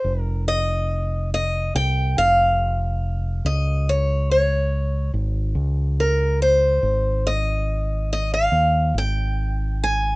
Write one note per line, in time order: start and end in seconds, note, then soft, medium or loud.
0.00 0.21 C5 medium
0.04 1.71 F1 medium
0.21 0.43 A#4 medium
0.48 1.29 D#5 medium
1.34 1.73 D#5 medium
1.75 2.15 C2 medium
1.75 2.18 G5 medium
2.17 3.40 F1 medium
2.17 3.45 F5 medium
3.45 5.10 C#2 medium
3.45 3.89 D#5 medium
3.89 4.30 C#5 medium
4.31 5.11 C#5 medium
5.14 5.53 G#1 medium
5.55 6.78 C#2 medium
6.00 6.42 A#4 medium
6.42 7.28 C5 medium
6.83 8.48 G#1 medium
7.27 8.11 D#5 medium
8.13 8.33 D#5 medium
8.34 8.98 F5 medium
8.52 8.92 D#2 medium
8.94 10.16 G#1 medium
8.94 9.83 G5 medium
9.84 10.16 G#5 medium